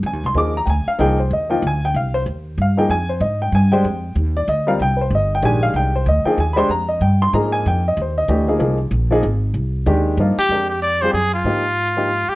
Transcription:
0.03 upright bass F2, grand piano G#5
0.13 upright bass D#2
0.24 upright bass C2, grand piano C6
0.35 upright bass D#2, grand piano F3 A#3 D#4 G#4 D6
0.57 grand piano A#5
0.66 upright bass D2, grand piano G5
0.70 grand piano G#5
0.87 grand piano F5, muted upright bass stroke
0.99 upright bass C2, grand piano F3 A#3 D#4 G#4 G5
1.20 grand piano C5
1.31 upright bass D#2, grand piano D#5
1.50 grand piano F3 A#3 D#4 F4 G5
1.63 upright bass D2
1.67 grand piano G#5
1.85 grand piano G5
1.95 upright bass C2, grand piano F5
2.14 grand piano C5
2.26 upright bass D#2
2.58 upright bass G2, grand piano F5
2.77 grand piano F3 A#3 D#4 G#4 G5
2.89 upright bass F2, grand piano G#5
3.09 grand piano C5
3.20 upright bass G#2, grand piano D#5
3.42 grand piano G5
3.52 upright bass G2, grand piano G#5
3.72 grand piano G#3 D4 G4 C5 G5
3.84 upright bass F2
4.15 upright bass D#2
4.36 grand piano D5
4.48 upright bass D2, grand piano D#5
4.67 grand piano G3 C4 F4 A#4 F5
4.79 upright bass C2, grand piano G5
4.97 grand piano B4
5.01 grand piano C5
5.10 upright bass G1
5.15 grand piano D#5
5.35 grand piano G5
5.42 upright bass A#1, grand piano D#3 G#3 D4 G4 G#5
5.63 grand piano F5
5.74 upright bass C2, grand piano G5
5.96 grand piano C5
6.06 upright bass D2, grand piano D#5
6.25 grand piano F3 A#3 D#4 G#4 G5, muted upright bass stroke
6.38 upright bass D#2, grand piano G#5
6.53 grand piano G#3 D4 G4 C5 B5
6.59 grand piano C6
6.69 upright bass F2, grand piano A#5
6.89 grand piano D#5
7.01 upright bass G2, grand piano G5
7.22 grand piano C6
7.33 upright bass G#2, grand piano F3 A#3 D#4 G#4 A#5
7.52 grand piano G#5
7.65 upright bass F2, grand piano G5
7.88 grand piano D#5
7.97 upright bass D#2
8.02 grand piano C5
8.18 grand piano D#5
8.28 upright bass D2, grand piano E3 A3 D4 G4
8.48 grand piano F3 A#3 D#4 G#4
8.59 upright bass C2, grand piano F3 A#3 D#4 G#4
8.91 upright bass A#1
9.11 grand piano F3 A#3 D#4 G#4
9.23 upright bass G#1
9.54 upright bass C2
9.86 upright bass D#2, grand piano D#3 G#3 D4 G4
10.17 upright bass G2, grand piano F3 A#3 D#4 F4
10.37 trumpet G4, muted upright bass stroke
10.49 upright bass F2, grand piano G#3 D4 G4 A#4
10.69 trumpet G4
10.82 trumpet D5
11.02 grand piano G3 C4 F4 G#4, trumpet C5
11.10 upright bass F#2, trumpet G4 G#4
11.34 trumpet F4
11.44 upright bass G#2, grand piano F3 A#3 D#4 G4
11.97 grand piano F3 A#3 D#4 G4
12.28 trumpet G4, muted upright bass stroke

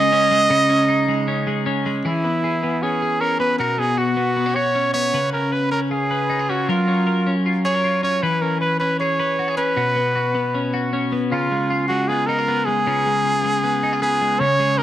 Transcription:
Already playing: clean electric guitar C#3 G#3 C#4 D#4, trumpet D#5
0.12 clean electric guitar C#4
0.31 clean electric guitar G#3
0.50 clean electric guitar C#3 D#4
0.69 clean electric guitar C#4
0.89 clean electric guitar D#4
1.08 clean electric guitar G#3
1.28 clean electric guitar C#4
1.47 clean electric guitar G#3
1.66 clean electric guitar C#4
1.86 clean electric guitar G#3
2.05 clean electric guitar E3 G#4, trumpet E4
2.24 clean electric guitar B3
2.44 clean electric guitar G#4
2.63 clean electric guitar B3
2.83 clean electric guitar C#4, trumpet G#4
3.02 clean electric guitar G#4
3.21 clean electric guitar C#4, trumpet A#4
3.40 clean electric guitar B3, trumpet B4
3.59 clean electric guitar B2 F#4, trumpet A#4
3.78 clean electric guitar B3, trumpet G#4
3.97 clean electric guitar F#4, trumpet F#4
4.17 clean electric guitar B3
4.37 clean electric guitar B3
4.46 clean electric guitar C#4
4.56 clean electric guitar F#4, trumpet C#5
4.75 clean electric guitar C#4
4.93 clean electric guitar B3, trumpet C#5
5.14 clean electric guitar C#3 B4
5.33 clean electric guitar C#4, trumpet A#4
5.52 clean electric guitar B4, trumpet B4
5.71 clean electric guitar C#4, trumpet A#4
5.91 clean electric guitar F4, trumpet G#4
6.11 clean electric guitar B4
6.30 clean electric guitar D#4
6.39 clean electric guitar F4
6.49 clean electric guitar C#4, trumpet F#4
6.68 clean electric guitar F#3 A#4, trumpet F4
6.88 clean electric guitar C#4
7.07 clean electric guitar A#4
7.27 clean electric guitar C#4
7.46 clean electric guitar F4
7.65 clean electric guitar G#4, trumpet C#5
7.75 clean electric guitar A#4
7.84 clean electric guitar F4
8.03 clean electric guitar C#4, trumpet C#5
8.23 clean electric guitar E3 B4, trumpet B4
8.42 clean electric guitar C#4, trumpet A#4
8.61 trumpet B4, clean electric guitar B4
8.79 clean electric guitar C#4, trumpet B4
9.00 clean electric guitar G#4, trumpet C#5
9.20 clean electric guitar B4
9.39 clean electric guitar F#4
9.48 clean electric guitar G#4
9.57 clean electric guitar C#4, trumpet B4
9.76 clean electric guitar B2 F#4
9.96 clean electric guitar B3
10.15 clean electric guitar F#4
10.35 clean electric guitar B3
10.55 clean electric guitar C#4
10.74 clean electric guitar F#4
10.93 clean electric guitar C#4
11.12 clean electric guitar B3
11.32 clean electric guitar C#3 F4, trumpet F4
11.51 clean electric guitar G#3
11.70 clean electric guitar F4
11.88 clean electric guitar G#3, trumpet F#4
12.08 clean electric guitar B3, trumpet G#4
12.26 clean electric guitar D#4, trumpet A#4
12.39 clean electric guitar F4
12.48 clean electric guitar B3
12.65 clean electric guitar G#3, trumpet G#4
12.87 clean electric guitar C#3 F4
13.06 clean electric guitar G#3
13.25 clean electric guitar F4
13.44 clean electric guitar G#3
13.64 clean electric guitar B3
13.83 clean electric guitar D#4
13.93 clean electric guitar F4
14.02 clean electric guitar B3, trumpet G#4
14.21 clean electric guitar G#3
14.40 clean electric guitar C#3, trumpet C#5
14.60 clean electric guitar G#3
14.78 clean electric guitar D#4, trumpet A#4

